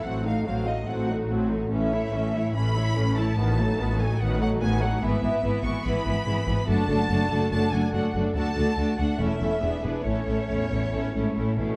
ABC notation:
X:1
M:4/4
L:1/8
Q:1/4=144
K:A
V:1 name="Violin section"
f =f f _e ^f z3 | e4 b3 a- | a3 g f f g f | e3 c' b4 |
a4 a g f z | a3 f e3 B | c6- c z |]
V:2 name="Violin section"
[FA] [_EF] [FA] [EF] [FA] [EF] [FA] [EF] | [CA] [Ec] [CA] [Ec] [CA] [Ec] [CA] [Ec] | [FB] [^DA] [FB] [DA] [FB] [DA] [FB] [DA] | [EB] [EB] [EB] [EB] [EB] [EB] [EB] [EB] |
[FA] [FA] [FA] [FA] [FA] [FA] [FA] [FA] | [FA] [FA] [FA] [FA] [EA] [EA] [EG] [EG] | [EA] [EA] [EA] [EA] [EA] [EA] [EA] [EA] |]
V:3 name="Viola section"
[F,=C] A, [F,C] A, [F,C] A, [F,C] A, | [E,C] [A,E] [E,C] [A,E] [E,C] [A,E] [E,C] [A,E] | [^D,B,] [F,A,] [D,B,] [F,A,] [D,B,] [F,A,] [D,B,] [F,A,] | [E,B,] [E,B,] [E,B,] [E,B,] [E,B,] [E,B,] [E,B,] [E,B,] |
[A,D] [A,D] [A,D] [A,D] [A,D] [A,D] [A,D] [A,D] | [A,D] [A,D] [A,D] [A,D] [A,C] [A,C] [B,D] [B,D] | [A,C] [A,C] [A,C] [A,C] [A,C] [A,C] [A,C] [A,C] |]
V:4 name="Cello section" clef=bass
A,,2 A,,2 A,,2 A,,2 | A,,2 A,,2 A,,2 A,,2 | A,,2 A,,2 A,,2 A,,2 | G,, G,, G,, G,, G,, G,, G,, G,, |
F,, F,, F,, F,, F,, F,, F,, F,, | D,, D,, D,, D,, E,, E,, E,, E,, | A,, A,, E,,3 G,, A,, B,, |]
V:5 name="Double bass section" clef=bass
A,,,2 A,,,2 A,,,2 A,,,2 | A,,,2 A,,,2 A,,,2 A,,,2 | A,,,2 A,,,2 A,,,2 A,,,2 | G,,, G,,, G,,, G,,, G,,, G,,, G,,, G,,, |
F,,, F,,, F,,, F,,, F,,, F,,, F,,, F,,, | D,, D,, D,, D,, E,,, E,,, E,,, E,,, | A,,, A,,, A,,, A,,, A,,, A,,, A,,, A,,, |]